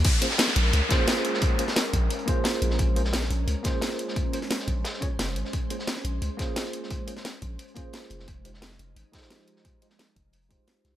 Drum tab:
CC |x-------------------------------|--------------------------------|--------------------------------|--------------------------------|
HH |x---x---x---x---x---x---x---x---|x---x---x---x---x-x-x---x---x---|x---x---x---x---x---x---x---x---|x---x---x---x---x---x---x---x---|
SD |------o-o-o---------o---o-o---o-|------o-o---------------o-o---o-|------o-o-o---------o---o-o---o-|------o-o-o-----o-o-----o-o---o-|
BD |o-------------------o-----------|o-----------o-------o-----------|o-------------------o-----------|o-----------o-------o-----------|

CC |--------------------------------|--------------------------------|--------------------------------|--------------------------------|
HH |x---x---x---x---x---x---x---x---|x---x---x---x---x-x-x---x---x---|x---x---x---x---x---xxx-x---x---|x---x---x---x---x-x-x---x---x---|
SD |------o-o-o---------o---o-o---o-|------o-o---------------o-o---o-|------o-o-o---------ooo-o-o---o-|------o-o---------------o---o---|
BD |o-------------------o-----------|o-----------o-------o-----------|o-------------------o-----------|o-----------o-------o-----------|